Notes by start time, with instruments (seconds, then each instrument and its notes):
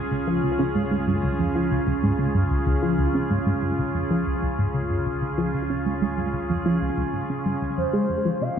Already playing: synth drone C#2, ambient pad C#3 C#4 F4 G#4
0.11 synth arpeggio sound C#2
0.27 synth arpeggio sound F3
0.43 synth arpeggio sound C#2
0.59 synth arpeggio sound C#3
0.75 synth arpeggio sound G#2
0.91 synth arpeggio sound G#2
1.07 synth arpeggio sound G2
1.23 synth arpeggio sound C#2
1.39 synth arpeggio sound F2
1.55 synth arpeggio sound F3
1.71 synth arpeggio sound C#2
1.87 synth arpeggio sound C#2
2.03 synth arpeggio sound G#2
2.19 synth arpeggio sound C#3
2.35 synth arpeggio sound G2
2.50 synth arpeggio sound C#2
2.67 synth arpeggio sound C#2
2.83 synth arpeggio sound F3
2.99 synth arpeggio sound C#2
3.14 synth arpeggio sound C#3
3.30 synth arpeggio sound G#2
3.46 synth arpeggio sound G#2
3.63 synth arpeggio sound G2
3.79 synth arpeggio sound C#2
3.95 synth arpeggio sound F2
4.10 synth arpeggio sound F3
4.26 synth arpeggio sound C#2
4.42 synth arpeggio sound C#2
4.58 synth arpeggio sound G#2
4.74 synth arpeggio sound C#3
4.90 synth arpeggio sound G2
5.06 synth arpeggio sound C#2
5.22 synth arpeggio sound C#2
5.38 synth arpeggio sound F3
5.54 synth arpeggio sound C#2
5.70 synth arpeggio sound C#3
5.86 synth arpeggio sound G#2
6.02 synth arpeggio sound G#2
6.18 synth arpeggio sound G2
6.34 synth arpeggio sound C#2
6.50 synth arpeggio sound F2
6.66 synth arpeggio sound F3
6.82 synth arpeggio sound C#2
6.98 synth arpeggio sound C#2
7.13 synth arpeggio sound G#2
7.30 synth arpeggio sound C#3
7.46 synth arpeggio sound G2
7.62 synth arpeggio sound C#2
7.77 synth drone F2, synth arpeggio sound F2, ambient pad F3 F4 G4 G#4, analog synth lead C5
7.93 synth arpeggio sound G#3
8.10 synth arpeggio sound F2
8.25 synth arpeggio sound F3
8.41 synth arpeggio sound C3, analog synth lead F5